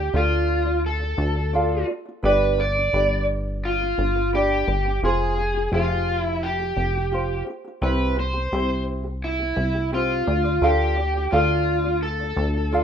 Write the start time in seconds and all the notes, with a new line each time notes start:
Already playing: G4 D5
0.00 F4
0.14 D2 F4 A4 D5 F5
0.66 F4 D5
0.86 A4
1.00 F4 D5
1.17 D2 F4 D5
1.35 F4 D5
1.53 F4 A4 D5 F5
1.87 F4 D5
2.06 F4 D5
2.23 G1 D4 G4 B4 D5
2.58 D4 B4 D5
2.75 D4 B4
2.93 G1 D4 G4 B4 D5
3.65 F4
3.80 D4 B4
3.98 G1 D4 B4
4.15 D4 B4
4.33 D4 G4 B4 D5
4.68 G1 D4 B4
4.85 D4 B4
5.03 F1 F4 G#4 C5
5.37 F4 G4
5.54 F4 G4
5.72 F1 F4 G4 G#4 C5
6.24 E4
6.43 G4
6.59 F4 G4
6.76 F1 F4 G4
6.94 F4 G4
7.12 F4 G4 C5
7.46 F4 G4
7.65 F4 G4
7.81 C2 C4 E4 G4 B4
8.16 C4 G4 C5
8.33 C4 G4
8.52 C2 C4 E4 G4 C5
9.04 C4 G4
9.24 E4
9.39 C4 G4
9.56 C2 C4 G4
9.74 C4 G4
9.92 C4 F4 G4 C5
10.27 D2 F4 D5
10.44 F4 D5
10.62 D2 F4 G4 A4 D5 F5
10.97 F4 D5
11.13 F4 D5
11.31 D2 F4 A4 D5 F5
11.84 F4 D5
12.03 A4
12.20 F4 D5
12.36 D2 F4 D5
12.54 F4 D5
12.72 F4 A4 D5 F5